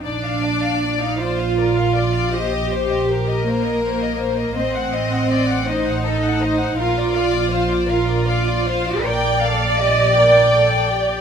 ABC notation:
X:1
M:6/8
L:1/16
Q:3/8=54
K:Bb
V:1 name="Violin section"
d f d f d f d f d f d f | c e c e c e c e c e c e | e ^f e f e f e f e f e f | f d f d f d f d f d f d |
g2 f2 e2 g6 |]
V:2 name="Violin section"
d6 c2 B2 d2 | e2 c2 B8 | c2 e2 d2 c2 A2 c2 | B2 d2 c2 B2 d2 c2 |
B2 A2 G2 B2 A2 G2 |]
V:3 name="Cello section"
D4- D E F6 | G6 B,6 | C6 E6 | F6 F6 |
d12 |]
V:4 name="Viola section"
D4- D E F6 | G6 B,6 | C6 E6 | F6 F6 |
d12 |]
V:5 name="Double bass section" clef=bass
B,,,12- | B,,,12 | A,,,12 | B,,,12 |
B,,,12 |]